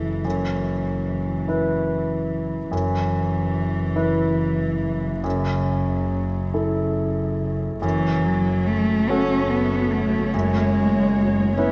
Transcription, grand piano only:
0.00 0.21 F#2 soft
0.00 0.21 E4 soft
0.00 0.21 A4 soft
0.25 2.68 F#2 soft
1.48 2.68 E4 soft
1.48 2.68 B4 soft
2.71 5.21 F#2 soft
3.96 5.20 E4 soft
3.96 5.20 B4 soft
5.24 7.78 F#2 soft
6.54 7.79 E4 soft
6.54 7.79 A4 soft
7.82 9.04 F#2 soft
9.10 10.30 C#4 soft
9.10 10.30 F#4 soft
9.10 10.31 A4 soft
10.34 11.54 F#2 soft
11.58 11.72 C#4 soft
11.58 11.72 E4 soft
11.58 11.72 B4 soft

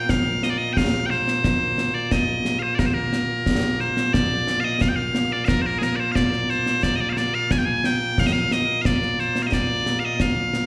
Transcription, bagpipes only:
0.00 10.66 A#2 medium
0.00 10.66 A#3 medium
0.10 0.43 F5 loud
0.43 0.50 D#5 medium
0.50 0.58 D5 medium
0.58 0.73 D#5 medium
0.73 0.77 G5 medium
0.77 1.06 F5 medium
1.06 1.10 G5 loud
1.10 1.94 C5 loud
1.94 2.12 D5 medium
2.12 2.59 D#5 medium
2.59 2.75 C5 medium
2.59 2.63 F5 medium
2.75 2.86 A#4 medium
2.75 2.79 D5 medium
2.86 2.94 C5 medium
2.94 3.80 A#4 medium
3.80 4.13 C5 medium
4.13 4.60 D5 loud
4.60 4.64 F5 medium
4.64 4.81 D#5 medium
4.81 4.88 F5 medium
4.88 4.96 G5 medium
4.96 5.32 F5 medium
5.32 5.45 D5 medium
5.45 5.61 A#4 medium
5.45 5.48 F5 medium
5.61 5.66 C5 medium
5.66 5.78 A#4 medium
5.78 5.83 G#4 medium
5.83 5.96 A#4 medium
5.96 6.12 C5 medium
5.96 6.00 D5 medium
6.12 6.50 D5 medium
6.12 6.15 F5 medium
6.50 6.83 C5 loud
6.83 6.96 D5 loud
6.96 7.00 D#5 medium
7.00 7.09 D5 medium
7.09 7.18 C5 medium
7.09 7.13 F5 medium
7.18 7.34 D5 loud
7.34 7.51 F5 medium
7.51 7.58 G#5 loud
7.58 7.66 G5 medium
7.66 7.86 G#5 loud
7.86 8.19 G5 loud
8.19 8.26 F5 loud
8.26 8.32 D#5 medium
8.32 8.52 F5 loud
8.52 8.82 D#5 loud
8.81 8.86 F5 medium
8.86 9.20 D5 medium
9.20 9.42 C5 medium
9.42 9.47 F5 medium
9.47 9.54 D#5 medium
9.54 9.99 D5 loud
9.99 10.05 F5 medium
10.05 10.21 D#5 medium
10.21 10.66 F5 medium

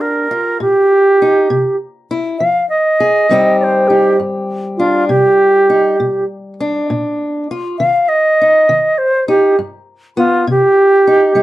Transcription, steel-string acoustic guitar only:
0.00 0.24 A#2 medium
0.00 0.30 D4 medium
0.00 0.60 G4 medium
0.31 0.56 F4 medium
0.60 1.14 A#2 medium
1.22 1.47 D#4 medium
1.50 2.04 C3 medium
2.11 2.36 E4 medium
2.40 2.94 F3 medium
3.00 3.26 G#4 medium
3.29 3.83 G2 medium
3.29 6.80 G3 medium
3.29 4.16 C4 medium
3.29 3.89 D#4 medium
3.29 6.00 G4 medium
3.90 4.16 D#4 medium
4.20 4.73 G2 medium
4.79 5.09 D4 medium
5.09 5.63 C3 medium
5.70 5.95 D#4 medium
6.00 6.53 B2 medium
6.60 7.49 D4 medium
6.90 7.43 A#2 medium
7.51 7.76 F4 medium
7.80 8.33 D#3 medium
8.41 8.66 D#4 medium
8.69 9.22 D#3 medium
9.28 9.54 D#4 medium
9.59 10.12 G2 medium
10.17 10.43 B3 medium
10.47 11.01 C3 medium
11.07 11.35 D#4 medium
11.35 11.43 G3 medium
11.35 11.43 D#4 medium

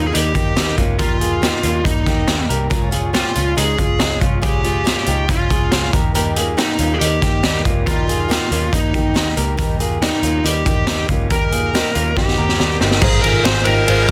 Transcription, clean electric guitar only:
0.00 0.13 C#4 soft
0.00 0.14 F4 medium
0.13 0.35 A#3 medium
0.13 0.34 D#4 medium
0.35 0.55 D#4 medium
0.35 0.56 G4 medium
0.57 0.79 A#3 medium
0.57 0.78 D#4 medium
0.78 1.00 C#4 medium
0.78 1.00 F4 medium
0.99 1.21 G4 medium
0.99 1.20 A#4 medium
1.21 1.41 F4 medium
1.21 1.42 G#4 medium
1.42 1.64 D#4 soft
1.42 1.63 G4 medium
1.63 1.84 C#4 medium
1.63 1.85 F4 medium
1.84 2.07 A#3 medium
1.84 2.06 D#4 medium
2.06 2.47 D#4 medium
2.06 2.47 G4 medium
2.49 2.71 G4 medium
2.49 2.69 A#4 medium
2.70 2.91 F4 medium
2.70 2.92 A#4 medium
2.92 3.14 F4 soft
2.92 3.14 G#4 medium
3.14 3.35 C#4 medium
3.14 3.35 G4 medium
3.36 3.56 C#4 soft
3.36 3.57 F4 medium
3.57 3.79 G#3 medium
3.57 3.79 D#4 medium
3.79 3.99 C#4 medium
3.79 4.00 F4 medium
3.99 4.22 G#3 medium
3.99 4.21 D#4 medium
4.21 4.42 C#4 medium
4.21 4.42 F4 medium
4.42 4.64 F4 medium
4.42 4.63 G#4 medium
4.64 4.85 F4 medium
4.64 4.86 G#4 medium
4.86 5.08 C#4 medium
4.86 5.07 F4 medium
5.08 5.29 D#4 medium
5.08 5.29 G4 medium
5.29 5.51 C#4 medium
5.29 5.51 F4 medium
5.51 5.92 F4 medium
5.51 5.91 G#4 medium
5.94 6.15 G4 medium
5.94 6.14 A#4 medium
6.15 6.37 G4 medium
6.15 6.36 A#4 medium
6.36 6.57 F4 soft
6.36 6.58 G#4 medium
6.57 6.80 D#4 medium
6.57 6.79 G4 medium
6.79 7.00 C#4 soft
6.79 7.01 F4 medium
7.00 7.23 A#3 medium
7.00 7.22 D#4 medium
7.23 7.43 D#4 soft
7.23 7.44 G4 medium
7.44 7.66 A#3 medium
7.44 7.65 D#4 medium
7.65 7.87 C#4 medium
7.65 7.87 F4 medium
7.88 8.09 G4 medium
7.88 8.09 A#4 medium
8.09 8.30 F4 medium
8.09 8.30 G#4 medium
8.31 8.52 D#4 medium
8.31 8.51 G4 medium
8.52 8.73 C#4 medium
8.52 8.73 F4 medium
8.73 8.95 A#3 medium
8.73 8.94 D#4 medium
8.94 9.35 D#4 medium
8.94 9.34 G4 medium
9.37 9.58 G4 medium
9.37 9.57 A#4 medium
9.58 9.80 G4 medium
9.58 9.80 A#4 medium
9.80 10.01 F4 soft
9.80 10.02 G#4 medium
10.02 10.24 D#4 medium
10.02 10.23 G4 medium
10.23 10.44 C#4 soft
10.23 10.45 F4 medium
10.44 10.66 A#3 medium
10.44 10.66 D#4 medium
10.66 10.87 D#4 medium
10.66 10.88 G4 medium
10.88 11.09 A#3 medium
10.88 11.09 D#4 medium
11.09 11.31 C#4 medium
11.09 11.31 F4 medium
11.30 11.52 G4 medium
11.30 11.52 A#4 medium
11.52 11.74 F4 medium
11.52 11.73 G#4 medium
11.74 11.95 D#4 soft
11.74 11.94 G4 medium
11.95 12.17 C#4 medium
11.95 12.16 F4 medium
12.17 12.38 D#4 medium
12.17 12.37 G4 medium
12.38 12.79 G4 medium
12.38 12.78 A#4 medium
12.81 13.03 D#4 medium
12.81 13.02 G4 medium
13.02 13.23 F4 medium
13.02 13.23 A#4 loud
13.23 13.45 F4 medium
13.23 13.45 G#4 medium
13.45 13.66 G#4 medium
13.45 13.66 C5 medium
13.67 13.88 D#4 medium
13.67 13.87 G4 medium
13.87 14.09 F4 medium
13.87 14.09 G#4 medium

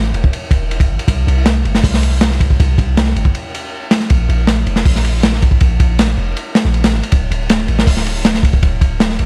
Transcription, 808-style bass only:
0.00 0.12 A1 loud
0.14 0.31 E1 medium
0.51 0.91 E1 loud
0.89 0.98 A1 loud
1.08 1.25 C2 loud
1.27 1.63 C2 loud
1.65 1.82 G1 medium
1.84 2.58 C2 loud
2.60 2.77 C2 loud
2.78 3.14 C2 loud
3.16 3.33 G1 medium
4.11 4.27 A#1 loud
4.29 4.65 A#1 loud
4.67 4.84 F1 medium
4.86 5.60 A#1 loud
5.61 5.78 A#1 loud
5.80 6.16 A#1 loud
6.18 6.35 F1 medium
6.65 6.95 A#1 medium
6.93 7.02 G#1 loud
7.12 7.29 D1 loud
7.31 7.67 D1 loud
7.68 7.86 A1 medium
7.87 8.61 D1 loud
8.63 8.80 D1 loud
8.81 9.18 D1 loud
9.19 9.26 A1 medium

